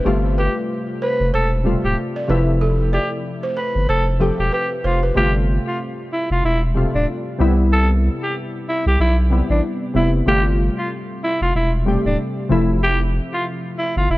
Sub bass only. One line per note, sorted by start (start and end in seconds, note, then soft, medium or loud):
0.06 0.48 G1 loud
1.20 1.31 F1 medium
1.33 1.76 E1 medium
1.84 1.95 D1 medium
2.29 2.99 F1 loud
3.75 3.87 G1 medium
3.89 4.31 F1 loud
4.39 4.50 E1 medium
4.84 5.11 F1 medium
5.16 5.59 G1 loud
6.31 6.42 F1 loud
6.44 6.86 E1 loud
6.94 7.06 D1 medium
7.40 8.09 C2 loud
8.86 8.97 C2 medium
8.99 9.42 B1 medium
9.50 9.61 A1 medium
9.95 10.22 F1 loud
10.27 10.69 G1 loud
11.41 11.52 F1 medium
11.54 11.97 E1 medium
12.05 12.16 D1 medium
12.50 13.20 F1 loud
13.97 14.08 G1 medium
14.10 14.18 F1 loud